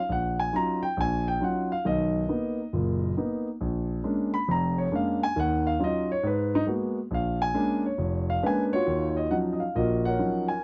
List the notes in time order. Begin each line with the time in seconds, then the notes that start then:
0.09 A#1 F#5
0.40 G#5
0.53 F#3 C#4 D#4 F4 A#5
0.83 G5
0.97 A#1 G#5
1.28 G5
1.40 F#3 C#4 D#4 F4 F#5
1.72 F5
1.85 B1 D#3 D#5
2.28 A#3 B3 D#4
2.73 F#1 A#2
3.17 A#3 B3 D#4
3.61 A#1
4.04 G#3 A#3 C#4 D4
4.34 B5
4.48 F1 F2 A#5
4.78 C#5
4.92 G#3 A#3 C#4 D4 F5
5.23 G#5
5.36 D#2 D#3 F#5
5.67 F5
5.80 F#3 C#4 D#4 F4
5.84 D#5
6.12 C#5
6.23 G#2 B4
6.55 D#4
6.66 G#3 A#3 B3 F#4
7.11 A#1 F5
7.42 G#5
7.54 G#3 A#3 C#4 D4
7.86 C#5
7.98 F1
8.30 F5
8.43 G#3 A#3 C#4 D4 B4 G#5
8.73 F4 F#4 C#5
8.87 D#2 D#3
9.09 C#5
9.17 D#5
9.31 F3 F#3 C#4 D#4 F#5
9.53 D#5
9.60 F5
9.75 A#1 A#2 F#4 A#4 D#5
10.05 A#4 C#5 F#5
10.19 F3 F#3 C#4 D#4
10.48 G#5